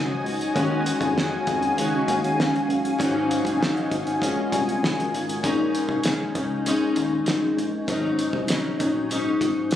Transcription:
Already playing: C#2 G#2 F#3 C#4 D#4 F#4 D#5 G#5
0.24 C#2, open hi-hat
0.41 closed hi-hat
0.54 D#2 D#3 G#3 C#4 F#4 F5, kick, closed hi-hat
0.86 closed hi-hat
1.00 F2, kick, closed hi-hat
1.16 D#3 G#3 C#4 F#4, snare
1.47 F2, kick, closed hi-hat
1.62 closed hi-hat
1.76 C#2 D#3 G#3 C#4, closed hi-hat
1.81 F#4
2.08 D#2, kick, closed hi-hat
2.24 closed hi-hat
2.40 snare
2.56 closed hi-hat
2.69 F#1, closed hi-hat
2.85 closed hi-hat
2.98 G#1 G#2 F#3 C#4 D#4 D#5, kick, closed hi-hat
3.31 closed hi-hat
3.45 F#1, kick, closed hi-hat
3.59 G#2 F#3 C#4 D#4, snare
3.77 closed hi-hat
3.91 G#1, kick, closed hi-hat
4.07 closed hi-hat
4.20 A#1 A#2 G#3 C#4 A#4 F5 G#5, kick, closed hi-hat
4.25 F4
4.52 C2, kick, closed hi-hat
4.69 closed hi-hat
4.83 F1, snare
5.00 closed hi-hat
5.14 G#1, closed hi-hat
5.29 closed hi-hat
5.43 A#1 A#2 G#3 C#4 D#4, kick, closed hi-hat
5.75 closed hi-hat
5.88 C2, kick
6.03 A#2 G#3 C#4 D#4, snare, closed hi-hat
6.35 C#2 G#3 C#4 D#4, kick, closed hi-hat
6.65 A#2 G#3 C#4 D#4, closed hi-hat
6.96 D#2, closed hi-hat
7.26 G#1, snare, closed hi-hat
7.57 A#1, closed hi-hat
7.88 G#1 G#2 F#3 C#4 D#4, kick, closed hi-hat
8.19 closed hi-hat
8.33 C2, kick
8.48 G#2 F#3 C#4 D#4, snare, closed hi-hat
8.79 A#1 F#3 C#4 D#4, kick, closed hi-hat
9.09 G#2 F#3 C#4 D#4, closed hi-hat
9.41 G#1, kick, closed hi-hat
9.71 snare, closed hi-hat

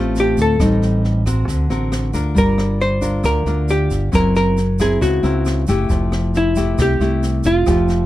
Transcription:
Already playing: A1 A2 A3 C4 F4 G4
0.16 snare, shaker
0.20 G4
0.37 D2, kick, snare, shaker
0.42 A4
0.59 A1 A2 G3 C4 D#4, kick, cross-stick, snare, shaker
0.82 snare, shaker
1.04 snare
1.26 C4 F#4 A#4, kick, cross-stick, snare, shaker
1.48 D2 D3, kick, snare, shaker
1.70 A1 C4 F#4 A#4, snare, shaker
1.92 cross-stick, snare, shaker
2.13 D2 D4 F4 A#4, kick, snare, shaker
2.35 G1 G3 A#4, kick, snare, shaker
2.58 cross-stick, snare, shaker
2.80 C5, snare
3.01 D4 F4 A#4, kick, snare, shaker
3.23 D2 D3 A#4, kick, cross-stick, snare, shaker
3.46 D2 D4 F4 A#4, snare, shaker
3.68 G4, snare, shaker
3.91 G1, kick, snare, shaker
4.12 F#1 F#3 C4 E4 A#4, kick, cross-stick, snare, shaker
4.35 A#4, snare, shaker
4.57 snare, shaker
4.79 C4 E4 G#4 A#4, kick, cross-stick, snare, shaker
5.01 C#2 C#3 F#4, kick, snare, shaker
5.23 C#2 C4 E4 A#4, snare, shaker
5.45 cross-stick, snare, shaker
5.67 F#1 A3 E4 G4, kick, snare, shaker
5.89 F1 F3, kick, snare, shaker
6.12 cross-stick, snare, shaker
6.34 E4, snare, shaker
6.56 A3 E4 G4, kick, snare, shaker
6.78 C2 C3 G4, kick, cross-stick, snare, shaker
7.00 C2 A3 E4 G4, snare, shaker
7.23 snare, shaker
7.44 F1 F4, kick, snare, shaker
7.66 F1 F3 A3 G4, kick, cross-stick, snare, shaker
7.88 snare, shaker

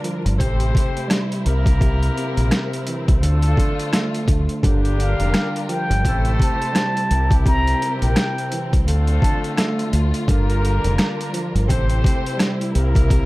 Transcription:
Already playing: D3 G3 D4 F4 A#4
0.04 F3, closed hi-hat
0.25 G1, closed hi-hat
0.38 A1 C3 A3 C4 E4 G4 A4 C5, kick, closed hi-hat
0.60 closed hi-hat
0.75 C3, kick, closed hi-hat
0.97 closed hi-hat
1.08 G3, cross-stick, snare, closed hi-hat
1.32 closed hi-hat
1.43 C2 C3 C4 A#4, closed hi-hat
1.48 A#3 E4 G4 A#4
1.66 kick, closed hi-hat
1.81 C3, kick, closed hi-hat
2.03 closed hi-hat
2.17 C3, closed hi-hat
2.37 A#1, closed hi-hat
2.51 cross-stick, snare, closed hi-hat
2.73 closed hi-hat
2.87 E3, closed hi-hat
3.08 C2, kick, closed hi-hat
3.21 D2 D3 A3 D4 F4 A4, closed hi-hat
3.42 closed hi-hat
3.57 D3, kick, closed hi-hat
3.79 closed hi-hat
3.93 A3, cross-stick, snare, closed hi-hat
4.14 closed hi-hat
4.28 D2 D3, kick, closed hi-hat
4.49 closed hi-hat
4.63 G1 D3 G3 A#3 D4 F4 G4 A#4, kick, closed hi-hat
4.85 closed hi-hat
4.98 D3 F5, closed hi-hat
5.19 F1, closed hi-hat
5.34 cross-stick, snare, closed hi-hat
5.56 closed hi-hat
5.69 F3 G5, closed hi-hat
5.90 G1, closed hi-hat
6.04 A1 C3 A3 C4 E4 G4 A4 C5, kick, closed hi-hat
6.25 closed hi-hat
6.40 C3 A5, kick, closed hi-hat
6.62 closed hi-hat
6.72 G3, cross-stick, snare, closed hi-hat
6.97 closed hi-hat
7.10 C2 C3 G3 C4 E4 G4 A#4, closed hi-hat
7.31 kick, closed hi-hat
7.46 C3 A#5, kick, closed hi-hat
7.67 closed hi-hat
7.82 C3, closed hi-hat
8.02 A#1 G5, closed hi-hat
8.16 cross-stick, snare, closed hi-hat
8.38 closed hi-hat
8.52 E3, closed hi-hat
8.73 C2, kick, closed hi-hat
8.87 D2 D3 A3 D4 F4 A4, closed hi-hat
9.07 closed hi-hat
9.22 D3 A5, kick, closed hi-hat
9.44 closed hi-hat
9.57 A3, cross-stick, snare, closed hi-hat
9.79 closed hi-hat
9.93 D2 D3, closed hi-hat
10.14 closed hi-hat
10.27 G1 D3 G3 A#3 D4 F4 G4 A#4, kick, closed hi-hat
10.50 closed hi-hat
10.62 D3, closed hi-hat
10.84 F1, closed hi-hat
10.98 cross-stick, snare, closed hi-hat
11.21 closed hi-hat
11.33 F3, closed hi-hat
11.55 G1, closed hi-hat
11.68 A1 C3 A3 C4 E4 G4 A4 C5, kick, closed hi-hat
11.90 closed hi-hat
12.04 C3, kick, closed hi-hat
12.26 closed hi-hat
12.37 G3, cross-stick, snare, closed hi-hat
12.61 closed hi-hat
12.73 C2 C3 C4 A#4, closed hi-hat
12.78 A#3 E4 G4 A#4
12.95 kick, closed hi-hat
13.10 C3, kick, closed hi-hat

